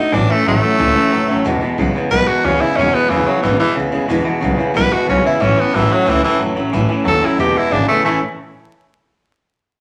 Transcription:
Already playing: D#4 F#4
0.00 A3 D4
0.12 A1 A2 E3 A3 C#4 D4 E4
0.29 A2 E3 A3 C#4 E4, muted upright bass stroke
0.46 A1 A2 E3 F#3 A3 C#4 E4
0.61 A2 F#3 A3 C#4 E4, muted upright bass stroke
0.77 C#2 A2 E3 A3 C#4 E4
0.93 A2 E3 A3 C#4 E4, muted upright bass stroke
1.10 F#1 A2 E3 F#3 A3 C#4 E4
1.28 A1 A2 F#3 A3 C#4 E4
1.45 E1 E2 B2 E3 G#3 B3 E4
1.61 E2 B2 E3 G#3 B3 E4, muted upright bass stroke
1.78 B1 E2 C#3 E3 G#3 B3 E4
1.94 E2 C#3 E3 G#3 B3 E4, muted upright bass stroke
2.10 B1 E2 B2 E3 G#3 B3 E4 B4
2.27 E2 B2 E3 G#3 B3 E4 F#4, muted upright bass stroke
2.44 D2 E2 C#3 E3 G#3 B3 C#4 E4
2.61 E2 C#3 G#3 B3 E4, muted upright bass stroke
2.65 E3
2.77 E1 E2 B2 E3 C#4
2.81 G#3 B3 E4
2.94 E2 B2 E3 G#3 B3 E4, muted upright bass stroke
3.09 E1 E2 C#3 E3 G#3
3.14 B3 E4
3.25 E2 C#3 F#3 E4, muted upright bass stroke
3.29 E3 G#3 B3
3.41 G#1 E2 B2 E3
3.46 G#3 B3 E4
3.58 E2 B2 E3 B3 E4, muted upright bass stroke
3.62 E3 G#3
3.75 D2 E2 C#3 E3 G#3 B3
3.80 E4
3.91 E1 E2 C#3 G#3 B3 E4
3.95 E3
4.08 E1 E2 B2 E3 G#3 B3 E4
4.24 E2 B2 G#3 B3 E4, muted upright bass stroke
4.29 E3
4.41 B1 E2 C#3 E3 G#3 B3 E4
4.57 E2 C#3 G#3 B3 E4, muted upright bass stroke
4.62 E3
4.74 B1 E2 B2 E3 G#3 B3 E4 B4
4.91 E2 B2 E3 G#3 B3 E4 F#4, muted upright bass stroke
5.06 B1 E2 C#3 E3 G#3 B3 C#4 E4
5.23 E2 C#3 E3 G#3 B3 E4
5.40 A1 A2 E3 A3 C#4 E4
5.56 A2 E3 A3 C#4 E4, muted upright bass stroke
5.60 B3
5.73 A1 A2 E3 F#3 A3 C#4 E4
5.90 A2 F#3 A3 C#4 E4, muted upright bass stroke
6.06 C#2 A2 E3 A3 C#4 E4
6.23 A2 E3 C#4 E4, muted upright bass stroke
6.27 A3
6.38 F#1 A2 E3 F#3 A3
6.42 C#4 E4
6.55 A1 A2 F#3 A3 C#4 E4
6.72 A1 A2 E3 A3 C#4 E4
6.89 A2 E3 A3 C#4 E4, muted upright bass stroke
7.04 D#2 A2 E3 F#3 A3 C#4 E4 A4
7.21 A2 F#3 A3 C#4 E4, muted upright bass stroke
7.25 E4
7.38 E1 E2 B2 E3 G#3 B3 E4 G4
7.55 E2 B2 E3 G#3 B3 E4, muted upright bass stroke
7.71 G#1 E2 C#3 E3 G#3 B3 D4
7.75 E4
7.88 E2 C#3 G#3 A3 B3 E4, muted upright bass stroke
7.92 E3
8.04 A1 A2 E3 A3 C#4 E4

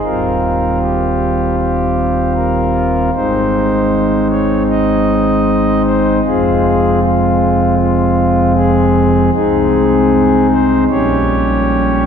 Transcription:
0.03 D#1 D#2 G3 C4 F4 A#4
0.80 G4
1.58 G4
2.35 A#4
3.14 G#1 G#2 G#3 C4 D#4 C5
4.30 C#5
4.69 D#5
5.84 C5
6.25 F1 F2 G#3 C4 F4 G#4
7.01 F4
7.77 F4
8.54 G#4
9.33 C2 C3 G#3 C4 D#4 G#4
10.50 C5
10.90 A#1 A#2 G3 C#4 G4 C#5

